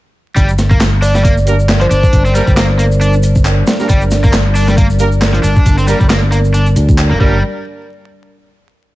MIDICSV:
0, 0, Header, 1, 7, 480
1, 0, Start_track
1, 0, Key_signature, -2, "minor"
1, 0, Tempo, 441176
1, 397, Time_signature, 4, 2, 24, 8
1, 9738, End_track
2, 0, Start_track
2, 0, Title_t, "Kalimba"
2, 0, Program_c, 0, 108
2, 1111, Note_on_c, 0, 74, 89
2, 1201, Note_off_c, 0, 74, 0
2, 1255, Note_on_c, 0, 74, 82
2, 1321, Note_off_c, 0, 74, 0
2, 1971, Note_on_c, 0, 72, 93
2, 2638, Note_off_c, 0, 72, 0
2, 9738, End_track
3, 0, Start_track
3, 0, Title_t, "Analog synth pad"
3, 0, Program_c, 1, 89
3, 394, Note_on_c, 1, 62, 79
3, 395, Note_on_c, 1, 74, 94
3, 396, Note_on_c, 1, 70, 75
3, 399, Note_on_c, 1, 55, 86
3, 7792, Note_off_c, 1, 62, 0
3, 7793, Note_off_c, 1, 70, 0
3, 7793, Note_off_c, 1, 74, 0
3, 7794, Note_off_c, 1, 55, 0
3, 9738, End_track
4, 0, Start_track
4, 0, Title_t, "Horn section"
4, 0, Program_c, 2, 61
4, 1595, Note_on_c, 2, 58, 94
4, 1595, Note_on_c, 2, 67, 85
4, 1596, Note_on_c, 2, 62, 89
4, 1596, Note_on_c, 2, 70, 100
4, 1693, Note_off_c, 2, 58, 0
4, 1693, Note_off_c, 2, 67, 0
4, 1693, Note_off_c, 2, 70, 0
4, 1694, Note_off_c, 2, 62, 0
4, 2555, Note_on_c, 2, 58, 89
4, 2555, Note_on_c, 2, 62, 83
4, 2556, Note_on_c, 2, 67, 81
4, 2556, Note_on_c, 2, 70, 100
4, 2653, Note_off_c, 2, 58, 0
4, 2653, Note_off_c, 2, 62, 0
4, 2654, Note_off_c, 2, 67, 0
4, 2654, Note_off_c, 2, 70, 0
4, 4132, Note_on_c, 2, 58, 83
4, 4132, Note_on_c, 2, 62, 75
4, 4132, Note_on_c, 2, 67, 77
4, 4133, Note_on_c, 2, 70, 89
4, 4207, Note_off_c, 2, 58, 0
4, 4207, Note_off_c, 2, 62, 0
4, 4208, Note_off_c, 2, 67, 0
4, 4208, Note_off_c, 2, 70, 0
4, 5439, Note_on_c, 2, 58, 99
4, 5439, Note_on_c, 2, 62, 93
4, 5439, Note_on_c, 2, 70, 113
4, 5440, Note_on_c, 2, 67, 90
4, 5535, Note_off_c, 2, 58, 0
4, 5535, Note_off_c, 2, 62, 0
4, 5535, Note_off_c, 2, 70, 0
4, 5536, Note_off_c, 2, 67, 0
4, 6399, Note_on_c, 2, 67, 86
4, 6399, Note_on_c, 2, 70, 104
4, 6400, Note_on_c, 2, 58, 93
4, 6400, Note_on_c, 2, 62, 85
4, 6495, Note_off_c, 2, 62, 0
4, 6495, Note_off_c, 2, 67, 0
4, 6495, Note_off_c, 2, 70, 0
4, 6496, Note_off_c, 2, 58, 0
4, 7836, Note_on_c, 2, 58, 83
4, 7836, Note_on_c, 2, 62, 79
4, 7836, Note_on_c, 2, 67, 80
4, 7837, Note_on_c, 2, 70, 97
4, 8021, Note_off_c, 2, 58, 0
4, 8021, Note_off_c, 2, 62, 0
4, 8021, Note_off_c, 2, 67, 0
4, 8021, Note_off_c, 2, 70, 0
4, 9738, End_track
5, 0, Start_track
5, 0, Title_t, "Overdriven electric guitar"
5, 0, Program_c, 3, 29
5, 391, Note_on_c, 3, 55, 83
5, 523, Note_off_c, 3, 55, 0
5, 770, Note_on_c, 3, 58, 102
5, 839, Note_off_c, 3, 58, 0
5, 1110, Note_on_c, 3, 62, 73
5, 1235, Note_off_c, 3, 62, 0
5, 1249, Note_on_c, 3, 55, 105
5, 1345, Note_off_c, 3, 55, 0
5, 1353, Note_on_c, 3, 58, 87
5, 1443, Note_off_c, 3, 58, 0
5, 1969, Note_on_c, 3, 53, 97
5, 2011, Note_off_c, 3, 53, 0
5, 2073, Note_on_c, 3, 62, 77
5, 2437, Note_off_c, 3, 62, 0
5, 2450, Note_on_c, 3, 60, 101
5, 2519, Note_off_c, 3, 60, 0
5, 2553, Note_on_c, 3, 55, 103
5, 2677, Note_off_c, 3, 55, 0
5, 2689, Note_on_c, 3, 55, 103
5, 2731, Note_off_c, 3, 55, 0
5, 2795, Note_on_c, 3, 58, 85
5, 2884, Note_off_c, 3, 58, 0
5, 3034, Note_on_c, 3, 58, 99
5, 3089, Note_off_c, 3, 58, 0
5, 3276, Note_on_c, 3, 62, 88
5, 3405, Note_off_c, 3, 62, 0
5, 4235, Note_on_c, 3, 55, 82
5, 4365, Note_off_c, 3, 55, 0
5, 4611, Note_on_c, 3, 58, 99
5, 4680, Note_off_c, 3, 58, 0
5, 4955, Note_on_c, 3, 62, 79
5, 5078, Note_off_c, 3, 62, 0
5, 5089, Note_on_c, 3, 55, 107
5, 5185, Note_off_c, 3, 55, 0
5, 5194, Note_on_c, 3, 58, 88
5, 5284, Note_off_c, 3, 58, 0
5, 5806, Note_on_c, 3, 53, 100
5, 5850, Note_off_c, 3, 53, 0
5, 5911, Note_on_c, 3, 62, 81
5, 6276, Note_off_c, 3, 62, 0
5, 6289, Note_on_c, 3, 60, 102
5, 6359, Note_off_c, 3, 60, 0
5, 6397, Note_on_c, 3, 55, 105
5, 6514, Note_off_c, 3, 55, 0
5, 6527, Note_on_c, 3, 55, 105
5, 6571, Note_off_c, 3, 55, 0
5, 6634, Note_on_c, 3, 58, 88
5, 6724, Note_off_c, 3, 58, 0
5, 6876, Note_on_c, 3, 58, 102
5, 6929, Note_off_c, 3, 58, 0
5, 7114, Note_on_c, 3, 62, 89
5, 7244, Note_off_c, 3, 62, 0
5, 7731, Note_on_c, 3, 58, 75
5, 7826, Note_off_c, 3, 58, 0
5, 7836, Note_on_c, 3, 55, 93
5, 8060, Note_off_c, 3, 55, 0
5, 9738, End_track
6, 0, Start_track
6, 0, Title_t, "Fingered electric bass"
6, 0, Program_c, 4, 33
6, 396, Note_on_c, 4, 31, 102
6, 2010, Note_off_c, 4, 31, 0
6, 2075, Note_on_c, 4, 31, 91
6, 2233, Note_off_c, 4, 31, 0
6, 2317, Note_on_c, 4, 31, 102
6, 2607, Note_off_c, 4, 31, 0
6, 2692, Note_on_c, 4, 31, 97
6, 3931, Note_off_c, 4, 31, 0
6, 4237, Note_on_c, 4, 31, 103
6, 5851, Note_off_c, 4, 31, 0
6, 5915, Note_on_c, 4, 31, 91
6, 6073, Note_off_c, 4, 31, 0
6, 6159, Note_on_c, 4, 31, 102
6, 6447, Note_off_c, 4, 31, 0
6, 6535, Note_on_c, 4, 31, 97
6, 7351, Note_off_c, 4, 31, 0
6, 7357, Note_on_c, 4, 38, 92
6, 7731, Note_on_c, 4, 29, 98
6, 7747, Note_off_c, 4, 38, 0
6, 7831, Note_off_c, 4, 29, 0
6, 7838, Note_on_c, 4, 31, 98
6, 8061, Note_off_c, 4, 31, 0
6, 9738, End_track
7, 0, Start_track
7, 0, Title_t, "Drums"
7, 394, Note_on_c, 9, 82, 41
7, 397, Note_on_c, 9, 36, 121
7, 397, Note_on_c, 9, 42, 97
7, 503, Note_off_c, 9, 82, 0
7, 505, Note_off_c, 9, 36, 0
7, 506, Note_off_c, 9, 42, 0
7, 532, Note_on_c, 9, 82, 29
7, 635, Note_off_c, 9, 82, 0
7, 635, Note_on_c, 9, 82, 80
7, 637, Note_on_c, 9, 38, 52
7, 637, Note_on_c, 9, 42, 71
7, 744, Note_off_c, 9, 82, 0
7, 746, Note_off_c, 9, 38, 0
7, 746, Note_off_c, 9, 42, 0
7, 772, Note_on_c, 9, 36, 97
7, 772, Note_on_c, 9, 82, 34
7, 876, Note_on_c, 9, 38, 118
7, 876, Note_on_c, 9, 42, 91
7, 877, Note_off_c, 9, 82, 0
7, 877, Note_on_c, 9, 39, 107
7, 877, Note_on_c, 9, 82, 45
7, 881, Note_off_c, 9, 36, 0
7, 985, Note_off_c, 9, 38, 0
7, 985, Note_off_c, 9, 42, 0
7, 986, Note_off_c, 9, 39, 0
7, 986, Note_off_c, 9, 82, 0
7, 1115, Note_on_c, 9, 46, 84
7, 1118, Note_on_c, 9, 82, 76
7, 1224, Note_off_c, 9, 46, 0
7, 1227, Note_off_c, 9, 82, 0
7, 1251, Note_on_c, 9, 38, 46
7, 1253, Note_on_c, 9, 82, 37
7, 1356, Note_on_c, 9, 42, 91
7, 1357, Note_on_c, 9, 36, 116
7, 1359, Note_off_c, 9, 82, 0
7, 1359, Note_on_c, 9, 82, 46
7, 1360, Note_off_c, 9, 38, 0
7, 1465, Note_off_c, 9, 36, 0
7, 1465, Note_off_c, 9, 42, 0
7, 1467, Note_off_c, 9, 82, 0
7, 1495, Note_on_c, 9, 82, 29
7, 1596, Note_on_c, 9, 42, 70
7, 1599, Note_off_c, 9, 82, 0
7, 1599, Note_on_c, 9, 82, 82
7, 1705, Note_off_c, 9, 42, 0
7, 1708, Note_off_c, 9, 82, 0
7, 1736, Note_on_c, 9, 82, 35
7, 1838, Note_on_c, 9, 38, 115
7, 1838, Note_on_c, 9, 42, 83
7, 1840, Note_off_c, 9, 82, 0
7, 1840, Note_on_c, 9, 39, 111
7, 1840, Note_on_c, 9, 82, 45
7, 1947, Note_off_c, 9, 38, 0
7, 1947, Note_off_c, 9, 42, 0
7, 1949, Note_off_c, 9, 39, 0
7, 1949, Note_off_c, 9, 82, 0
7, 1971, Note_on_c, 9, 42, 44
7, 2076, Note_off_c, 9, 42, 0
7, 2076, Note_on_c, 9, 42, 71
7, 2080, Note_on_c, 9, 82, 80
7, 2185, Note_off_c, 9, 42, 0
7, 2189, Note_off_c, 9, 82, 0
7, 2212, Note_on_c, 9, 36, 100
7, 2217, Note_on_c, 9, 82, 35
7, 2316, Note_on_c, 9, 42, 95
7, 2317, Note_off_c, 9, 36, 0
7, 2317, Note_on_c, 9, 36, 120
7, 2323, Note_off_c, 9, 82, 0
7, 2323, Note_on_c, 9, 82, 44
7, 2425, Note_off_c, 9, 42, 0
7, 2426, Note_off_c, 9, 36, 0
7, 2431, Note_off_c, 9, 82, 0
7, 2456, Note_on_c, 9, 82, 31
7, 2557, Note_on_c, 9, 42, 66
7, 2560, Note_off_c, 9, 82, 0
7, 2560, Note_on_c, 9, 82, 85
7, 2666, Note_off_c, 9, 42, 0
7, 2669, Note_off_c, 9, 82, 0
7, 2692, Note_on_c, 9, 36, 103
7, 2693, Note_on_c, 9, 82, 32
7, 2796, Note_on_c, 9, 38, 123
7, 2796, Note_on_c, 9, 42, 88
7, 2799, Note_off_c, 9, 82, 0
7, 2799, Note_on_c, 9, 39, 115
7, 2799, Note_on_c, 9, 82, 47
7, 2801, Note_off_c, 9, 36, 0
7, 2905, Note_off_c, 9, 38, 0
7, 2905, Note_off_c, 9, 42, 0
7, 2908, Note_off_c, 9, 39, 0
7, 2908, Note_off_c, 9, 82, 0
7, 3037, Note_on_c, 9, 42, 72
7, 3039, Note_on_c, 9, 82, 78
7, 3146, Note_off_c, 9, 42, 0
7, 3147, Note_off_c, 9, 82, 0
7, 3174, Note_on_c, 9, 82, 36
7, 3277, Note_on_c, 9, 42, 89
7, 3278, Note_off_c, 9, 82, 0
7, 3278, Note_on_c, 9, 82, 46
7, 3386, Note_off_c, 9, 42, 0
7, 3387, Note_off_c, 9, 82, 0
7, 3409, Note_on_c, 9, 82, 30
7, 3513, Note_off_c, 9, 82, 0
7, 3513, Note_on_c, 9, 82, 76
7, 3518, Note_on_c, 9, 42, 67
7, 3622, Note_off_c, 9, 82, 0
7, 3627, Note_off_c, 9, 42, 0
7, 3649, Note_on_c, 9, 82, 34
7, 3653, Note_on_c, 9, 36, 96
7, 3755, Note_off_c, 9, 82, 0
7, 3755, Note_on_c, 9, 39, 108
7, 3755, Note_on_c, 9, 82, 47
7, 3758, Note_on_c, 9, 42, 84
7, 3762, Note_off_c, 9, 36, 0
7, 3863, Note_off_c, 9, 39, 0
7, 3863, Note_off_c, 9, 82, 0
7, 3866, Note_off_c, 9, 42, 0
7, 3994, Note_on_c, 9, 82, 78
7, 3997, Note_on_c, 9, 38, 116
7, 3997, Note_on_c, 9, 42, 71
7, 4103, Note_off_c, 9, 82, 0
7, 4106, Note_off_c, 9, 38, 0
7, 4106, Note_off_c, 9, 42, 0
7, 4127, Note_on_c, 9, 82, 33
7, 4133, Note_on_c, 9, 38, 41
7, 4232, Note_off_c, 9, 82, 0
7, 4232, Note_on_c, 9, 82, 42
7, 4237, Note_on_c, 9, 42, 94
7, 4238, Note_on_c, 9, 36, 116
7, 4241, Note_off_c, 9, 38, 0
7, 4341, Note_off_c, 9, 82, 0
7, 4346, Note_off_c, 9, 36, 0
7, 4346, Note_off_c, 9, 42, 0
7, 4369, Note_on_c, 9, 82, 29
7, 4473, Note_off_c, 9, 82, 0
7, 4473, Note_on_c, 9, 82, 82
7, 4479, Note_on_c, 9, 38, 52
7, 4479, Note_on_c, 9, 42, 66
7, 4581, Note_off_c, 9, 82, 0
7, 4588, Note_off_c, 9, 38, 0
7, 4588, Note_off_c, 9, 42, 0
7, 4608, Note_on_c, 9, 82, 32
7, 4614, Note_on_c, 9, 36, 102
7, 4714, Note_off_c, 9, 82, 0
7, 4714, Note_on_c, 9, 39, 117
7, 4714, Note_on_c, 9, 82, 46
7, 4716, Note_on_c, 9, 38, 113
7, 4716, Note_on_c, 9, 42, 94
7, 4722, Note_off_c, 9, 36, 0
7, 4823, Note_off_c, 9, 39, 0
7, 4823, Note_off_c, 9, 82, 0
7, 4825, Note_off_c, 9, 38, 0
7, 4825, Note_off_c, 9, 42, 0
7, 4956, Note_on_c, 9, 82, 78
7, 4959, Note_on_c, 9, 46, 85
7, 5064, Note_off_c, 9, 82, 0
7, 5068, Note_off_c, 9, 46, 0
7, 5089, Note_on_c, 9, 82, 33
7, 5095, Note_on_c, 9, 38, 45
7, 5195, Note_off_c, 9, 82, 0
7, 5195, Note_on_c, 9, 82, 44
7, 5200, Note_on_c, 9, 36, 111
7, 5201, Note_on_c, 9, 42, 89
7, 5204, Note_off_c, 9, 38, 0
7, 5304, Note_off_c, 9, 82, 0
7, 5308, Note_off_c, 9, 36, 0
7, 5309, Note_off_c, 9, 42, 0
7, 5330, Note_on_c, 9, 82, 29
7, 5433, Note_off_c, 9, 82, 0
7, 5433, Note_on_c, 9, 82, 80
7, 5438, Note_on_c, 9, 42, 73
7, 5542, Note_off_c, 9, 82, 0
7, 5547, Note_off_c, 9, 42, 0
7, 5571, Note_on_c, 9, 82, 34
7, 5675, Note_off_c, 9, 82, 0
7, 5675, Note_on_c, 9, 39, 113
7, 5675, Note_on_c, 9, 82, 46
7, 5678, Note_on_c, 9, 38, 122
7, 5678, Note_on_c, 9, 42, 92
7, 5784, Note_off_c, 9, 39, 0
7, 5784, Note_off_c, 9, 82, 0
7, 5786, Note_off_c, 9, 38, 0
7, 5786, Note_off_c, 9, 42, 0
7, 5815, Note_on_c, 9, 42, 47
7, 5916, Note_on_c, 9, 82, 77
7, 5919, Note_off_c, 9, 42, 0
7, 5919, Note_on_c, 9, 42, 73
7, 6024, Note_off_c, 9, 82, 0
7, 6028, Note_off_c, 9, 42, 0
7, 6050, Note_on_c, 9, 82, 35
7, 6054, Note_on_c, 9, 36, 101
7, 6156, Note_off_c, 9, 82, 0
7, 6156, Note_on_c, 9, 42, 97
7, 6156, Note_on_c, 9, 82, 41
7, 6159, Note_off_c, 9, 36, 0
7, 6159, Note_on_c, 9, 36, 118
7, 6264, Note_off_c, 9, 82, 0
7, 6265, Note_off_c, 9, 42, 0
7, 6267, Note_off_c, 9, 36, 0
7, 6290, Note_on_c, 9, 82, 31
7, 6395, Note_off_c, 9, 82, 0
7, 6395, Note_on_c, 9, 82, 77
7, 6398, Note_on_c, 9, 42, 68
7, 6504, Note_off_c, 9, 82, 0
7, 6507, Note_off_c, 9, 42, 0
7, 6533, Note_on_c, 9, 82, 32
7, 6534, Note_on_c, 9, 36, 104
7, 6636, Note_on_c, 9, 38, 117
7, 6636, Note_on_c, 9, 42, 88
7, 6639, Note_off_c, 9, 82, 0
7, 6639, Note_on_c, 9, 39, 117
7, 6639, Note_on_c, 9, 82, 46
7, 6643, Note_off_c, 9, 36, 0
7, 6745, Note_off_c, 9, 38, 0
7, 6745, Note_off_c, 9, 42, 0
7, 6747, Note_off_c, 9, 39, 0
7, 6747, Note_off_c, 9, 82, 0
7, 6877, Note_on_c, 9, 42, 74
7, 6880, Note_on_c, 9, 82, 71
7, 6986, Note_off_c, 9, 42, 0
7, 6988, Note_off_c, 9, 82, 0
7, 7015, Note_on_c, 9, 82, 34
7, 7118, Note_on_c, 9, 42, 89
7, 7119, Note_off_c, 9, 82, 0
7, 7119, Note_on_c, 9, 82, 44
7, 7227, Note_off_c, 9, 42, 0
7, 7227, Note_off_c, 9, 82, 0
7, 7250, Note_on_c, 9, 82, 29
7, 7356, Note_on_c, 9, 42, 70
7, 7358, Note_off_c, 9, 82, 0
7, 7358, Note_on_c, 9, 82, 73
7, 7465, Note_off_c, 9, 42, 0
7, 7467, Note_off_c, 9, 82, 0
7, 7493, Note_on_c, 9, 36, 97
7, 7495, Note_on_c, 9, 82, 33
7, 7597, Note_off_c, 9, 82, 0
7, 7597, Note_on_c, 9, 39, 121
7, 7597, Note_on_c, 9, 42, 83
7, 7597, Note_on_c, 9, 82, 44
7, 7602, Note_off_c, 9, 36, 0
7, 7705, Note_off_c, 9, 42, 0
7, 7706, Note_off_c, 9, 39, 0
7, 7706, Note_off_c, 9, 82, 0
7, 7838, Note_on_c, 9, 36, 113
7, 7947, Note_off_c, 9, 36, 0
7, 9738, End_track
0, 0, End_of_file